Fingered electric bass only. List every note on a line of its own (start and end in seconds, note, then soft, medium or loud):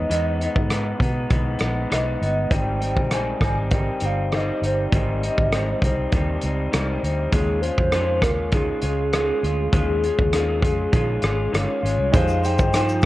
0.10 0.46 E2 medium
0.56 0.92 G#2 medium
1.00 1.24 B2 medium
1.30 1.55 B1 medium
1.60 1.85 A#1 medium
1.91 2.15 B1 medium
2.22 2.45 G1 medium
2.51 2.97 G#1 medium
2.97 3.33 A#1 medium
3.41 3.89 G#1 medium
4.02 4.50 G1 medium
4.62 4.86 G1 medium
4.92 5.28 G#1 medium
5.37 5.73 G#1 medium
5.82 6.06 C2 medium
6.13 6.36 D#2 medium
6.43 6.67 C#2 medium
6.73 6.97 C2 medium
7.03 7.27 D2 medium
7.33 7.69 D#2 medium
7.78 8.22 F2 medium
8.22 8.70 D#2 medium
8.83 9.31 C#2 medium
9.43 9.67 D2 medium
9.73 10.09 D#2 medium
10.19 10.62 D#2 medium
10.62 10.86 F2 medium
10.93 11.17 A#1 medium
11.23 11.47 G#1 medium
11.53 11.65 G1 medium
11.83 11.95 G#1 medium
11.98 12.10 C2 medium
12.14 12.59 F2 loud
12.59 13.03 G2 loud